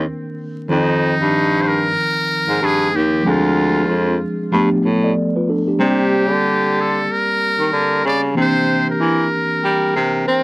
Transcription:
Already playing: D#3 A#3 C4 D4 A#4
0.69 F2 D#3 F3 C4 D#4
0.73 G5
1.21 G2
1.62 C5
1.68 A#4
2.49 G#2
2.62 G2 G#4
2.94 D#2 G4
3.23 D2 F3 G#3 C4 D4
3.27 F4 G#4
3.90 F2
4.52 G2 F3 A3 B3 D4
4.56 G4
4.71 A2
4.84 A2
5.04 A4 D5
5.36 F4 B4
5.49 D4 A4
5.68 D4 G4
5.79 C3 G3 A#3 C4 D5
5.83 G4
6.32 D3
6.81 A4
7.12 A#4
7.60 D#3
7.73 D3
8.05 C#3 D5
8.35 C3 E3 A#3 C4 D4 G4
8.41 C5
8.90 A#4
9.00 E3
9.64 G3
9.96 C3
10.27 C4 G5

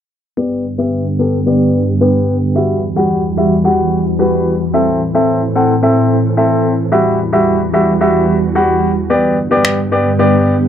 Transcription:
0.37 G2 D3 B3 G4 D5
0.78 B3 G4 E5
1.19 B3 G4 A4
1.46 B3 G4 D5
2.01 B3 G4 B4
2.55 E2 E3 G3 F#4 E5
2.96 G3 F#4 F#5
3.37 G3 F#4 E5
3.64 G3 F#4 F#5
4.19 G3 F#4 B4
4.74 A2 C4 A4 E5
5.15 C4 A4 E5
5.55 C4 A4 F#5
5.83 C4 A4 E5
6.37 C4 A4 E5
6.92 E2 G3 F#4 E5
7.33 G3 F#4 E5
7.74 G3 F#4 E5
8.01 G3 F#4 E5
8.55 G3 F#4 F#5
9.10 G2 D3 B3 G4 D5
9.51 B3 G4 D5
9.65 finger snap
9.92 B3 G4 D5
10.19 B3 G4 D5

